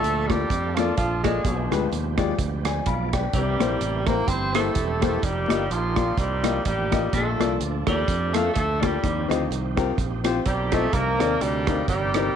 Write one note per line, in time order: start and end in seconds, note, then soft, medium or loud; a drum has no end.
0.00 0.44 D2 medium
0.00 0.27 A#2 medium
0.00 1.41 F3 medium
0.00 0.28 A3 loud
0.00 1.41 A3 medium
0.00 0.30 D4 medium
0.00 1.41 D4 medium
0.00 0.48 F4 medium
0.00 0.31 A4 loud
0.00 1.41 A4 medium
0.04 closed hi-hat medium
0.27 0.76 G3 medium
0.27 0.42 A#3 medium
0.27 0.43 F4 medium
0.27 0.78 G4 medium
0.27 kick medium
0.27 cross-stick loud
0.31 1.21 D4 medium
0.31 0.43 A4 medium
0.31 0.43 D5 medium
0.31 closed hi-hat medium
0.50 0.91 F2 medium
0.50 kick loud
0.50 closed hi-hat medium
0.74 0.96 F3 medium
0.74 0.90 A#3 medium
0.74 0.96 F4 medium
0.74 cross-stick loud
0.74 closed hi-hat medium
0.78 0.90 F4 medium
0.78 0.91 A4 medium
0.78 0.91 D5 medium
0.97 1.38 A#1 medium
0.97 1.22 F3 medium
0.97 1.22 F4 medium
0.97 kick medium
0.97 closed hi-hat medium
1.23 1.68 G#3 medium
1.23 1.37 A#3 medium
1.23 2.15 D4 medium
1.23 2.15 F4 medium
1.23 1.37 F4 medium
1.23 1.72 G#4 medium
1.23 1.37 A4 medium
1.23 1.38 D5 medium
1.23 kick medium
1.23 cross-stick loud
1.23 closed hi-hat medium
1.44 1.68 B1 medium
1.44 2.15 B2 medium
1.44 3.30 F3 medium
1.44 3.30 G#3 soft
1.44 3.30 B3 medium
1.44 2.83 G4 medium
1.44 kick loud
1.44 closed hi-hat medium
1.71 1.89 D2 medium
1.71 1.84 G#3 medium
1.71 1.84 F4 medium
1.71 1.84 G4 medium
1.71 1.85 B4 medium
1.71 cross-stick medium
1.71 closed hi-hat medium
1.92 2.32 D#2 medium
1.92 closed hi-hat medium
2.17 2.31 G#3 medium
2.17 2.31 F4 medium
2.17 2.31 G4 medium
2.17 2.31 D5 medium
2.17 kick medium
2.17 cross-stick loud
2.17 closed hi-hat medium
2.39 2.79 D2 medium
2.39 kick medium
2.39 closed hi-hat medium
2.65 2.86 D5 medium
2.65 2.86 G#5 medium
2.65 cross-stick loud
2.65 closed hi-hat medium
2.86 3.27 B1 medium
2.86 3.12 F4 medium
2.86 3.12 D5 medium
2.86 3.13 F5 medium
2.86 3.12 B5 medium
2.86 kick medium
2.86 closed hi-hat medium
3.12 3.58 D4 soft
3.12 3.58 B4 medium
3.12 3.59 D5 medium
3.12 3.58 G5 medium
3.12 kick medium
3.12 cross-stick loud
3.12 closed hi-hat medium
3.33 3.56 C2 medium
3.33 4.04 C3 medium
3.33 5.19 E3 medium
3.33 4.09 G3 medium
3.33 5.20 G3 medium
3.33 4.25 A#3 medium
3.33 5.20 C4 medium
3.33 4.25 E4 medium
3.33 5.20 G4 medium
3.33 4.04 G4 medium
3.33 kick loud
3.33 closed hi-hat medium
3.59 3.78 A#1 medium
3.59 3.72 A#3 medium
3.59 3.73 E4 medium
3.59 3.73 G4 medium
3.59 3.73 C5 medium
3.59 cross-stick medium
3.59 closed hi-hat medium
3.81 4.21 A1 medium
3.81 closed hi-hat medium
4.07 4.20 A#3 medium
4.07 4.29 A#3 medium
4.07 4.20 E4 soft
4.07 4.21 G4 medium
4.07 4.29 A#4 medium
4.07 4.21 C5 medium
4.07 kick medium
4.07 cross-stick loud
4.07 closed hi-hat medium
4.28 4.68 G1 medium
4.28 4.54 C4 loud
4.28 4.54 E4 medium
4.28 5.19 G4 medium
4.28 4.56 C5 medium
4.28 kick loud
4.28 closed hi-hat medium
4.54 5.25 A3 medium
4.54 4.67 A#3 medium
4.54 4.68 E4 medium
4.54 5.19 E4 medium
4.54 4.68 G4 medium
4.54 5.24 A4 medium
4.54 4.68 C5 medium
4.54 cross-stick loud
4.54 closed hi-hat medium
4.75 5.16 E1 medium
4.75 kick medium
4.75 closed hi-hat medium
5.01 5.14 A#3 medium
5.01 5.15 E4 medium
5.01 5.15 G4 medium
5.01 5.15 C5 medium
5.01 kick medium
5.01 cross-stick loud
5.01 closed hi-hat medium
5.21 5.46 F1 loud
5.21 7.08 F3 medium
5.21 5.73 G3 medium
5.21 7.08 A#3 soft
5.21 5.71 A#3 medium
5.21 7.08 D#4 medium
5.21 6.14 D#4 medium
5.21 7.08 G4 medium
5.21 5.71 G4 medium
5.21 kick loud
5.21 closed hi-hat medium
5.48 5.67 G1 medium
5.48 5.61 A#3 medium
5.48 5.62 F4 medium
5.48 5.62 G4 medium
5.48 5.62 D#5 medium
5.48 cross-stick medium
5.48 closed hi-hat medium
5.71 6.11 A#1 medium
5.71 6.20 F3 medium
5.71 6.18 A#3 medium
5.71 6.62 C4 medium
5.71 6.19 F4 medium
5.71 closed hi-hat medium
5.96 6.09 A#3 medium
5.96 6.09 F4 medium
5.96 6.10 G4 medium
5.96 6.10 D5 medium
5.96 kick medium
5.96 cross-stick loud
5.96 closed hi-hat medium
6.17 6.58 C2 medium
6.17 6.65 G3 medium
6.17 6.66 A#3 medium
6.17 6.66 D#4 medium
6.17 6.63 G4 medium
6.17 kick loud
6.17 closed hi-hat medium
6.43 6.56 A#3 medium
6.43 6.56 F4 medium
6.43 6.57 G4 medium
6.43 6.57 D#5 medium
6.43 cross-stick loud
6.43 closed hi-hat medium
6.65 7.06 A1 medium
6.65 7.15 G3 medium
6.65 7.11 A#3 medium
6.65 7.11 D#4 medium
6.65 7.11 G4 medium
6.65 kick medium
6.65 closed hi-hat medium
6.91 7.04 A#3 medium
6.91 7.04 F4 medium
6.91 7.05 G4 medium
6.91 7.05 D#5 medium
6.91 kick medium
6.91 cross-stick medium
6.91 closed hi-hat medium
7.13 7.36 A#1 medium
7.13 7.84 A#2 medium
7.13 8.99 F3 medium
7.13 8.99 A3 soft
7.13 7.58 A3 medium
7.13 8.99 D4 medium
7.13 7.87 D4 medium
7.13 8.05 F4 medium
7.13 8.99 A4 medium
7.13 7.58 A4 medium
7.13 kick medium
7.13 closed hi-hat medium
7.39 7.57 C2 medium
7.39 7.52 A#3 medium
7.39 7.52 F4 medium
7.39 7.52 A4 medium
7.39 7.53 D5 medium
7.39 cross-stick medium
7.39 closed hi-hat medium
7.60 7.83 D2 medium
7.60 closed hi-hat medium
7.86 8.05 D#2 medium
7.86 8.34 G3 medium
7.86 7.99 A#3 medium
7.86 8.79 D4 medium
7.86 7.99 F4 soft
7.86 8.32 G4 medium
7.86 8.00 A4 medium
7.86 8.00 D5 medium
7.86 kick medium
7.86 cross-stick loud
7.86 closed hi-hat medium
8.08 8.48 F2 medium
8.08 kick medium
8.08 closed hi-hat medium
8.33 8.53 A3 medium
8.33 8.47 A#3 medium
8.33 8.47 F4 medium
8.33 8.47 A4 medium
8.33 8.56 A4 medium
8.33 8.48 F5 medium
8.33 cross-stick loud
8.33 closed hi-hat medium
8.53 8.96 D2 medium
8.53 8.82 A3 medium
8.53 8.81 A4 medium
8.53 kick medium
8.53 closed hi-hat medium
8.81 9.29 G3 medium
8.81 8.94 A#3 medium
8.81 9.74 A#3 medium
8.81 9.74 C4 medium
8.81 8.95 F4 medium
8.81 9.31 G4 medium
8.81 8.95 A4 medium
8.81 8.95 D5 medium
8.81 kick medium
8.81 cross-stick loud
8.81 closed hi-hat medium
9.03 9.26 D#2 loud
9.03 9.73 D#3 medium
9.03 10.89 F3 medium
9.03 10.89 C4 medium
9.03 10.89 D#4 medium
9.03 10.90 G4 medium
9.03 kick loud
9.03 closed hi-hat medium
9.28 9.47 D2 medium
9.28 9.41 C4 medium
9.28 9.42 F4 medium
9.28 9.42 G4 medium
9.28 9.42 D#5 medium
9.28 cross-stick medium
9.28 closed hi-hat medium
9.51 9.91 C2 medium
9.51 closed hi-hat medium
9.76 9.89 C4 medium
9.76 9.89 F4 medium
9.76 9.89 G4 medium
9.76 9.90 A#4 medium
9.76 kick medium
9.76 cross-stick loud
9.76 closed hi-hat medium
9.98 10.38 A#1 medium
9.98 kick loud
9.98 closed hi-hat medium
10.24 10.37 C4 medium
10.24 10.37 F4 medium
10.24 10.37 G4 medium
10.24 10.37 C5 medium
10.24 cross-stick loud
10.24 closed hi-hat medium
10.46 10.86 B1 medium
10.46 10.74 G3 medium
10.46 10.90 A#3 medium
10.46 10.90 C4 medium
10.46 10.90 G4 medium
10.46 kick medium
10.46 closed hi-hat medium
10.72 10.95 A3 medium
10.72 10.84 C4 medium
10.72 10.85 F4 medium
10.72 10.85 G4 medium
10.72 10.85 D#5 medium
10.72 kick medium
10.72 cross-stick medium
10.72 closed hi-hat medium
10.92 11.16 C2 loud
10.92 12.36 C3 medium
10.92 11.64 C3 medium
10.92 11.43 A#3 medium
10.92 12.36 C4 medium
10.92 11.85 D4 medium
10.92 11.40 D#4 medium
10.92 10.99 A4 soft
10.92 11.41 A#4 loud
10.92 12.36 D5 medium
10.92 kick medium
10.92 closed hi-hat medium
10.98 12.36 A#4 medium
11.19 11.38 D#2 medium
11.19 11.32 C4 medium
11.19 11.32 D#4 medium
11.19 11.32 A#4 medium
11.19 11.33 D5 medium
11.19 cross-stick medium
11.19 closed hi-hat medium
11.41 11.81 D2 medium
11.41 11.88 G3 loud
11.41 11.88 A#3 medium
11.41 11.88 D#4 medium
11.41 11.88 G4 medium
11.41 closed hi-hat medium
11.67 11.80 C4 medium
11.67 11.80 D#4 medium
11.67 11.80 A#4 medium
11.67 11.81 F5 medium
11.67 kick medium
11.67 cross-stick loud
11.67 closed hi-hat medium
11.88 12.28 G1 medium
11.88 12.36 G3 medium
11.88 12.36 A#3 medium
11.88 12.36 D#4 medium
11.88 12.36 G4 medium
11.88 kick loud
11.88 closed hi-hat medium
12.14 12.27 C4 medium
12.14 12.28 D#4 medium
12.14 12.28 A#4 medium
12.14 12.28 D5 medium
12.14 cross-stick loud
12.14 closed hi-hat medium